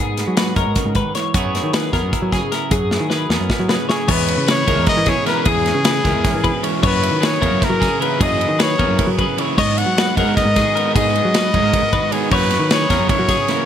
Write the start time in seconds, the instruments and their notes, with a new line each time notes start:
Already playing: clean electric guitar G#3 B3 G#4
0.00 picked electric bass G#2, clean electric guitar G#2
0.18 clean electric guitar B3, snare, closed hi-hat
0.27 picked electric bass F#3
0.37 clean electric guitar F#4 B4, snare, closed hi-hat
0.56 picked electric bass F#2, clean electric guitar G#3 A#4 C#5, kick, closed hi-hat
0.66 picked electric bass G#2
0.76 clean electric guitar C#3, kick, snare, closed hi-hat
0.86 picked electric bass G#2
0.95 clean electric guitar D#3 B4, kick, closed hi-hat
1.15 clean electric guitar E3 C#5, snare, closed hi-hat
1.34 picked electric bass F#2, clean electric guitar F#3 B3 E4 G#4 C#5, kick, closed hi-hat
1.55 clean electric guitar E4, snare, closed hi-hat
1.63 picked electric bass D#3
1.73 clean electric guitar G#4 B4, snare, closed hi-hat
1.93 picked electric bass E2, clean electric guitar B3 G#4 A#4, kick, snare, closed hi-hat
2.02 picked electric bass F#2
2.13 clean electric guitar E4, kick, closed hi-hat
2.22 picked electric bass F#3
2.32 clean electric guitar C#3 G#4, kick, snare, closed hi-hat
2.52 clean electric guitar E4 A#4, snare, closed hi-hat
2.71 picked electric bass F#2, clean electric guitar F#3 G#4, kick, closed hi-hat
2.91 clean electric guitar E4, snare
3.00 picked electric bass D#3
3.10 clean electric guitar G#4 B4, snare
3.30 picked electric bass E2, clean electric guitar B3 G#4 A#4, snare
3.40 picked electric bass F#2
3.50 clean electric guitar E4, kick, snare
3.60 picked electric bass F#3
3.69 clean electric guitar C#3 G#4 B4, snare
3.89 clean electric guitar E4 C#5, trumpet G#4, snare
4.08 picked electric bass E2, overdriven electric guitar E3 G#3 B3 E4, clean electric guitar E3 C#5, trumpet B4, kick, crash
4.28 clean electric guitar C#4, ride
4.37 picked electric bass C#3
4.47 clean electric guitar E4 B4, trumpet C#5, snare, ride
4.67 picked electric bass C#2, overdriven electric guitar E3 G#3 B3 E4, clean electric guitar G#3 G#4 A#4, kick, ride
4.77 picked electric bass E2
4.86 clean electric guitar C#4, trumpet D#5, kick, snare, ride
4.97 picked electric bass E3
5.06 clean electric guitar B2 E4 G#4, trumpet C#5, kick, snare, ride
5.26 overdriven electric guitar E3 G#3 B3 E4, clean electric guitar C#4 A#4, trumpet B4, snare, ride
5.45 picked electric bass E2, overdriven electric guitar E3 G#3 B3 E4, clean electric guitar E3 G#4, trumpet G#4, kick, ride
5.66 clean electric guitar C#4, snare, ride
5.75 picked electric bass C#3
5.84 clean electric guitar E4 B4, snare, ride
6.04 picked electric bass C#2, overdriven electric guitar E3 G#3 B3 E4, clean electric guitar G#3 E4 A#4, kick, snare, ride
6.15 picked electric bass E2
6.24 clean electric guitar C#4, kick, snare, ride
6.35 picked electric bass E3
6.43 clean electric guitar B2 E4 B4, kick, ride
6.63 overdriven electric guitar E3 G#3 B3 E4, clean electric guitar C#4 C#5, ride
6.81 picked electric bass F#2, overdriven electric guitar C#3 E3 A#3 E4, clean electric guitar F#3 C#5, trumpet B4, kick, crash
7.02 clean electric guitar E4, ride
7.12 picked electric bass D#3
7.21 clean electric guitar G#4 B4, trumpet C#5, snare, ride
7.40 picked electric bass E2, overdriven electric guitar C#3 E3 A#3 E4, clean electric guitar B3 G#4 A#4, kick, ride
7.51 picked electric bass F#2
7.60 clean electric guitar E4, kick, snare, ride
7.64 trumpet A#4
7.70 picked electric bass F#3
7.79 clean electric guitar C#3 G#4, kick, snare, ride
7.99 overdriven electric guitar C#3 E3 A#3 E4, clean electric guitar E4 A#4, trumpet B4, ride
8.19 picked electric bass F#2, overdriven electric guitar C#3 E3 A#3 E4, clean electric guitar F#3 G#4, trumpet D#5, kick, ride
8.41 clean electric guitar E4, ride
8.48 picked electric bass D#3
8.59 clean electric guitar G#4 B4, trumpet C#5, snare, ride
8.79 picked electric bass E2, overdriven electric guitar C#3 E3 A#3 E4, clean electric guitar B3 G#4 A#4, kick, ride
8.88 picked electric bass F#2
8.99 clean electric guitar E4, kick, ride
9.07 picked electric bass F#3
9.18 clean electric guitar C#3 G#4 B4, kick, ride
9.37 overdriven electric guitar C#3 E3 A#3 E4, clean electric guitar E4 C#5, ride
9.57 picked electric bass G#2, clean electric guitar G#2 C#5, overdriven electric guitar D#3 G#3 B3 D#4, trumpet D#5, kick, crash
9.78 clean electric guitar B3, trumpet F#5, ride
9.86 picked electric bass F#3
9.98 clean electric guitar F#4 B4, snare, ride
10.16 picked electric bass F#2, overdriven electric guitar D#3 G#3 B3 D#4, clean electric guitar G#3 G#4 A#4, trumpet F#5, kick, ride
10.25 picked electric bass G#2, clean electric guitar A#4
10.37 clean electric guitar B3, trumpet D#5, kick, snare, ride
10.45 picked electric bass G#2
10.56 clean electric guitar D#3 F#4 G#4, kick, snare, ride
10.75 overdriven electric guitar D#3 G#3 B3 D#4, clean electric guitar B3 A#4, ride
10.95 picked electric bass G#2, clean electric guitar G#2 G#4, overdriven electric guitar D#3 G#3 B3 D#4, trumpet D#5, kick, ride
11.15 clean electric guitar B3, ride
11.25 picked electric bass F#3
11.34 clean electric guitar F#4 B4, snare, ride
11.54 picked electric bass F#2, overdriven electric guitar D#3 G#3 B3 D#4, clean electric guitar G#3 G#4 A#4, kick, ride
11.62 picked electric bass G#2, clean electric guitar A#4
11.73 clean electric guitar B3, kick, ride
11.82 picked electric bass G#2
11.93 clean electric guitar D#3 F#4 B4, kick, ride
12.12 overdriven electric guitar D#3 G#3 B3 D#4, clean electric guitar B3 C#5, trumpet G#4, ride
12.31 picked electric bass F#2, overdriven electric guitar C#3 E3 A#3 C#4, clean electric guitar F#3 C#5, trumpet B4, kick, crash
12.50 clean electric guitar E4, snare, ride
12.60 picked electric bass D#3
12.70 clean electric guitar G#4 B4, trumpet C#5, snare, ride
12.90 picked electric bass E2, overdriven electric guitar C#3 E3 A#3 C#4, clean electric guitar B3 G#4 A#4, kick, snare, ride
12.99 picked electric bass F#2
13.09 clean electric guitar E4, trumpet C#5, kick, ride
13.19 picked electric bass F#3
13.28 clean electric guitar C#3 G#4, kick, snare, ride
13.48 overdriven electric guitar C#3 E3 A#3 C#4, clean electric guitar E4 A#4, snare, ride